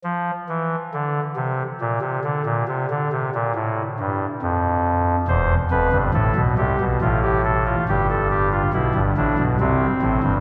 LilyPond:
\new Staff \with { instrumentName = "Pipe organ" } { \clef bass \time 3/4 \key c \mixolydian \tempo 4 = 69 << { f8 e8 d8 c8 bes,16 c16 d16 bes,16 | c16 d16 c16 bes,16 a,8 g,8 f,4 | c''8 b'8 a'8 g'8 f'16 g'16 a'16 f'16 | g'16 a'16 g'16 f'16 e'8 d'8 c'4 | } \\ { r2. | r2. | <e,, e,>8 <f,, f,>16 <g,, g,>16 <a,, a,>16 <b,, b,>16 <c, c>16 <b,, b,>16 <a,, a,>4 | <g,, g,>4 <b,, b,>16 <g,, g,>16 <a,, a,>16 <b,, b,>16 <c, c>8 <a,, a,>16 <g,, g,>16 | } >> }